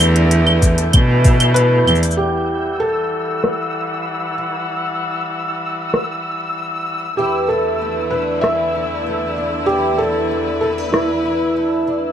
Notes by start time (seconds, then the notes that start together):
Already playing: E2 D3 E3 A3 D4 E4 G6
0.00 closed hi-hat, cabasa, claves
0.16 closed hi-hat
0.31 A3, closed hi-hat, cabasa
0.47 claves
0.62 A3, kick, closed hi-hat, cabasa
0.78 closed hi-hat, cabasa
0.93 B2 E3, kick, closed hi-hat, cabasa, claves
1.24 E4, kick, closed hi-hat, cabasa
1.40 closed hi-hat, cabasa, claves
1.54 A3 B4, closed hi-hat, cabasa
1.87 E2 D4, cabasa, claves
1.95 cabasa
2.03 closed hi-hat, cabasa
2.11 cabasa
2.17 E3 G3 G4 F#5 E6
2.42 cabasa
2.46 cabasa
2.50 cabasa
2.80 A4
3.44 cross-stick
5.00 cabasa
5.94 cross-stick
6.88 cabasa
7.17 E2 D3 E3 A3 E4 G4
7.48 A3 A4
7.81 A3
8.11 D4 B4
8.41 E3 E5, cross-stick
8.75 E4
9.06 A3
9.38 D4
9.66 E3 E4 G4 B4
9.98 A3 A4
10.31 A3
10.61 C4 A4
10.78 D4
10.92 E3 E4, cross-stick
11.25 E4
11.56 A3
11.88 D4, cabasa